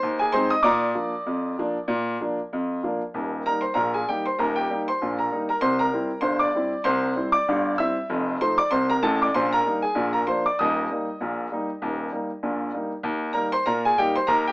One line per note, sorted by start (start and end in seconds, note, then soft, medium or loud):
0.00 0.29 D#2 medium
0.00 0.18 C5 medium
0.00 0.18 C6 medium
0.19 0.33 G#4 medium
0.19 0.33 G#5 medium
0.32 0.50 G#3 medium
0.32 0.51 C4 medium
0.32 0.51 D#4 medium
0.32 0.50 C5 medium
0.32 0.51 C6 medium
0.50 0.64 D#5 medium
0.50 0.64 D#6 medium
0.63 0.91 A#2 medium
0.63 2.48 D5 medium
0.63 2.48 A#5 medium
0.63 2.13 D6 medium
0.95 1.12 F3 soft
0.95 1.12 A#3 soft
0.95 1.13 D4 soft
1.26 1.53 F2 medium
1.58 1.76 F3 soft
1.58 1.75 A#3 soft
1.58 1.76 D4 medium
1.88 2.15 A#2 medium
2.20 2.38 F3 soft
2.20 2.38 A#3 soft
2.20 2.38 D4 medium
2.53 2.79 F2 medium
2.83 3.00 F3 medium
2.83 3.01 A#3 soft
2.83 3.01 D4 medium
3.14 3.41 D#1 medium
3.14 3.41 D#2 medium
3.46 3.63 G3 soft
3.46 3.63 A#3 soft
3.46 3.64 D#4 soft
3.46 3.62 A#4 medium
3.46 3.63 A#5 medium
3.61 3.75 C5 soft
3.61 3.75 C6 medium
3.74 4.02 A#1 medium
3.74 4.02 A#2 medium
3.74 3.92 A#4 medium
3.74 3.93 A#5 medium
3.94 4.07 G#4 medium
3.94 4.07 G#5 medium
4.08 4.25 G3 soft
4.08 4.26 A#3 soft
4.08 4.26 D#4 soft
4.08 4.25 G4 medium
4.08 4.25 G5 medium
4.26 4.38 C5 soft
4.26 4.39 C6 medium
4.39 4.65 D#1 medium
4.39 4.65 D#2 medium
4.39 4.55 A#4 medium
4.39 4.56 A#5 medium
4.56 4.85 G4 medium
4.56 4.80 G5 medium
4.70 4.87 G3 soft
4.70 4.87 A#3 soft
4.70 4.88 D#4 soft
4.88 5.17 C5 soft
4.88 5.17 C6 medium
5.02 5.27 A#1 medium
5.02 5.27 A#2 medium
5.19 5.47 A#4 soft
5.19 5.43 A#5 medium
5.32 5.49 G3 soft
5.32 5.49 A#3 soft
5.32 5.49 D#4 medium
5.49 5.62 A#4 medium
5.49 5.62 A#5 medium
5.61 5.88 C2 medium
5.61 5.88 C3 medium
5.61 5.78 C5 medium
5.61 5.79 C6 medium
5.79 6.21 A#4 medium
5.79 6.21 A#5 medium
5.93 6.10 G3 soft
5.93 6.10 C4 soft
5.93 6.10 E4 soft
6.21 6.49 G1 medium
6.21 6.49 G2 medium
6.21 6.39 C5 medium
6.21 6.39 C6 medium
6.39 6.82 D5 medium
6.39 6.82 D6 medium
6.55 6.72 G3 soft
6.55 6.72 C4 soft
6.55 6.72 E4 soft
6.84 7.11 C2 medium
6.84 7.11 C3 medium
6.84 7.30 C5 medium
6.84 7.30 C6 medium
7.16 7.33 G3 soft
7.16 7.34 C4 soft
7.16 7.33 E4 soft
7.32 7.75 D5 medium
7.32 7.75 D6 medium
7.48 7.74 G1 medium
7.48 7.74 G2 medium
7.78 7.95 G3 soft
7.78 7.95 C4 soft
7.78 7.96 E4 medium
7.78 8.07 E5 medium
7.78 8.07 E6 medium
8.10 8.35 F1 medium
8.10 8.35 F2 medium
8.41 8.57 F3 soft
8.41 8.58 A3 soft
8.41 8.58 D#4 soft
8.41 8.57 C5 medium
8.41 8.57 C6 medium
8.58 8.70 D5 medium
8.58 8.70 D6 medium
8.71 8.97 C2 medium
8.71 8.97 C3 medium
8.71 8.87 C5 medium
8.71 8.88 C6 medium
8.90 9.01 A#4 medium
8.90 9.02 A#5 medium
9.03 9.27 A1 medium
9.03 9.27 A2 medium
9.03 9.19 A4 medium
9.03 9.19 A5 medium
9.22 9.33 D5 medium
9.22 9.33 D6 medium
9.34 9.60 A#1 medium
9.34 9.60 A#2 medium
9.34 9.50 C5 medium
9.34 9.50 C6 medium
9.53 9.80 A#4 medium
9.53 9.80 A#5 medium
9.66 9.82 G3 soft
9.66 9.82 A#3 soft
9.66 9.82 D#4 medium
9.82 10.10 G#4 medium
9.82 10.11 G#5 medium
9.95 10.21 A#1 medium
9.95 10.21 A#2 medium
10.13 10.25 A#4 medium
10.13 10.25 A#5 medium
10.27 10.44 F3 soft
10.27 10.44 A#3 medium
10.27 10.45 D4 soft
10.27 10.43 C5 medium
10.27 10.43 C6 medium
10.46 10.57 D5 medium
10.46 10.57 D6 medium
10.59 10.85 D#1 medium
10.59 10.85 D#2 medium
10.59 12.72 D#5 medium
10.59 12.71 D#6 medium
10.91 11.07 G3 soft
10.91 11.07 A#3 soft
10.91 11.07 D#4 soft
11.21 11.46 A#1 medium
11.21 11.46 A#2 medium
11.52 11.68 G3 soft
11.52 11.68 A#3 soft
11.52 11.69 D#4 medium
11.82 12.07 D#1 medium
11.82 12.07 D#2 medium
12.12 12.29 G3 soft
12.12 12.29 A#3 soft
12.12 12.30 D#4 soft
12.43 12.69 A#1 medium
12.43 12.69 A#2 medium
12.74 12.91 G3 soft
12.74 12.91 A#3 soft
12.74 12.92 D#4 soft
13.03 13.30 D#2 medium
13.33 13.51 G3 soft
13.33 13.52 A#3 soft
13.33 13.52 D#4 soft
13.33 13.51 A#4 medium
13.33 13.52 A#5 medium
13.52 13.65 C5 medium
13.52 13.66 C6 medium
13.66 13.93 A#2 medium
13.66 13.82 A#4 medium
13.66 13.83 A#5 medium
13.85 13.97 G#4 medium
13.85 13.98 G#5 medium
13.98 14.15 G3 soft
13.98 14.15 A#3 soft
13.98 14.15 D#4 medium
13.98 14.14 G4 medium
13.98 14.15 G5 medium
14.16 14.28 C5 medium
14.16 14.28 C6 medium
14.27 14.52 D#2 medium
14.27 14.44 A#4 medium
14.27 14.45 A#5 medium
14.47 14.52 G4 medium
14.47 14.52 G5 medium